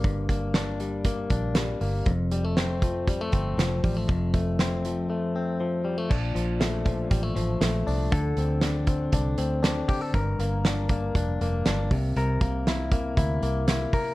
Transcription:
<<
  \new Staff \with { instrumentName = "Clean electric guitar" } { \time 4/4 \key g \dorian \tempo 4 = 119 <g, g bes d'>8 bes8 d'8 g8 bes8 d'8 g8 bes8 | f,8 g16 a16 c'8 f8 g16 a16 c'8 f8 g16 a16 | f,8 a8 c'8 f8 a8 c'8 f8 g16 a16 | <bes, d'>8 f8 a8 f8 g16 a16 f8 a8 d'8 |
<d a'>8 c'8 d'8 c'8 d'8 c'8 d'8 g'16 a'16 | <g, bes'>8 bes8 d'8 bes8 d'8 bes8 d'8 c8 | <c bes'>8 bes8 e'8 bes8 e'8 bes8 e'8 bes'8 | }
  \new Staff \with { instrumentName = "Fingered electric bass" } { \clef bass \time 4/4 \key g \dorian g,,2~ g,,8 bes,,4 g,,8 | f,,2~ f,,8 g,,8 f,,8 a,,8 | f,,2 r2 | bes,,8 bes,,4. a,,8 a,,8 bes,,8 c,8 |
d,8 d,4. c,8 d,4 r8 | g,,8 g,,4. f,,8 f,,8 g,,8 c,8 | c,8 c,4. d,8 c,4 r8 | }
  \new DrumStaff \with { instrumentName = "Drums" } \drummode { \time 4/4 <hh bd>8 <hh bd>8 <hh sn>8 hh8 <hh bd>8 <hh bd>8 <hh sn>8 hho8 | <hh bd>8 hh8 <hh sn>8 <hh bd>8 <hh bd>8 <hh bd>8 <hh sn>8 <hho bd>8 | <hh bd>8 <hh bd>8 <hh sn>8 hh8 r4 r4 | <cymc bd>8 hh8 <hh sn>8 <hh bd>8 <hh bd>8 hh8 <hh sn>8 hho8 |
<hh bd>8 hh8 <hh sn>8 <hh bd>8 <hh bd>8 hh8 <hh sn>8 <hho bd>8 | <hh bd>8 hh8 <hh sn>8 <hh bd>8 <hh bd>8 hh8 <hh sn>8 <hho bd>8 | hh8 <hh bd>8 <hh sn>8 <hh bd>8 <hh bd>8 hh8 <hh sn>8 <hho bd>8 | }
>>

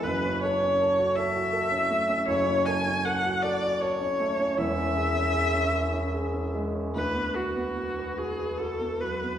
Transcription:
<<
  \new Staff \with { instrumentName = "Viola" } { \time 6/8 \key fis \minor \tempo 4. = 52 b'8 cis''4 e''4. | cis''8 gis''8 fis''8 d''8 cis''4 | e''2~ e''8 r8 | b'8 fis'4 gis'8 a'8 b'8 | }
  \new Staff \with { instrumentName = "Grand piano" } { \time 6/8 \key fis \minor <fis,, fis,>16 cis'16 a'16 cis'16 a'16 fis'16 a'16 fis'16 a'16 cis'16 a16 cis'16 | <fis,, fis,>16 cis'16 a'16 cis'16 a'16 fis'16 a'16 fis'16 a'16 cis'16 a16 cis'16 | <e,, e,>16 cis'16 gis'16 cis'16 gis'16 cis'16 gis'16 cis'16 gis'16 cis'16 gis16 cis'16 | d,16 b16 fis'16 b16 fis'16 b'16 fis'16 b'16 fis'16 b16 fis16 b16 | }
>>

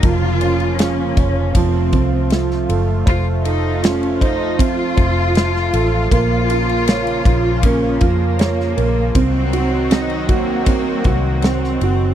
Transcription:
<<
  \new Staff \with { instrumentName = "Grand piano" } { \time 4/4 \key bes \minor \tempo 4 = 79 f8 des'8 f'8 des''8 f8 c'8 f'8 a'8 | c''8 a'8 f'8 c''8 c'8 c''8 f'8 a'8 | bes8 f'8 des''8 f'8 bes8 f'8 des''8 bes8 | c'8 ges'8 c'8 ges'8 c'8 ges'8 c'8 ges'8 | }
  \new Staff \with { instrumentName = "Cello section" } { \time 4/4 \key bes \minor f'4 des'4 c'4. r8 | f'8 ees'8 des'8 ees'8 f'2 | f'2 des'8 bes4. | c'4 ees'8 bes4. c'4 | }
  \new Staff \with { instrumentName = "Analog synth pad" } { \time 4/4 \key bes \minor << { <f bes f'>1~ | <f bes f'>1~ | <f bes f'>1 | <ges ges'>1 | } \\ { des2 a2~ | a1 | <des bes>1 | <ees c'>1 | } >> }
  \new Staff \with { instrumentName = "Fingered electric bass" } { \clef bass \time 4/4 \key bes \minor f,,4. f,,8 f,,8 c,4 ges,,8 | f,,2~ f,,8 f,,4 a,,8 | bes,,4. bes,,4 f,4 bes,,8 | c,2~ c,8 c,4 ges,,8 | }
  \new DrumStaff \with { instrumentName = "Drums" } \drummode { \time 4/4 <bd cymr>8 cymr16 cymr16 <cymr sn>8 <bd cymr>8 <bd cymr>8 <bd cymr>8 <cymr sn>16 sn16 cymr8 | <bd cymr>8 cymr8 <cymr sn>16 cymr16 <bd cymr>8 <bd cymr>8 <bd cymr>8 <cymr sn>16 sn16 cymr8 | <bd cymr>8 cymr16 cymr16 <cymr sn>16 cymr16 <bd cymr>8 <bd cymr>8 <bd cymr>8 <cymr sn>16 sn16 cymr8 | <bd cymr>8 cymr8 <cymr sn>16 cymr16 <bd cymr>8 <bd cymr>8 <bd cymr>8 <cymr sn>16 sn16 cymr8 | }
>>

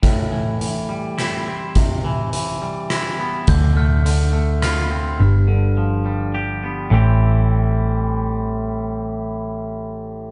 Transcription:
<<
  \new Staff \with { instrumentName = "Glockenspiel" } { \time 3/4 \key a \minor \tempo 4 = 105 r2. | r2. | g'''8 f'''4 r8 f'''4 | r2. |
r2. | r2. | }
  \new Staff \with { instrumentName = "Clean electric guitar" } { \clef bass \time 3/4 \key a \minor a,8 e8 e8 g8 e'8 c'8 | c8 e8 e8 g8 e'8 b8 | d8 a8 d8 a8 f'8 c'8 | g,8 d8 f8 g8 g'8 b8 |
<a, e g c' g'>2.~ | <a, e g c' g'>2. | }
  \new Staff \with { instrumentName = "Picked electric bass" } { \clef bass \time 3/4 \key a \minor r2. | r2. | d,2. | g,,2. |
a,,2.~ | a,,2. | }
  \new DrumStaff \with { instrumentName = "Drums" } \drummode { \time 3/4 <hh bd>4 hh4 <hh ss>4 | <hh bd>4 hh4 <hh ss>4 | <hh bd>4 hh4 <hh ss>4 | r4 r4 r4 |
r4 r4 r4 | r4 r4 r4 | }
>>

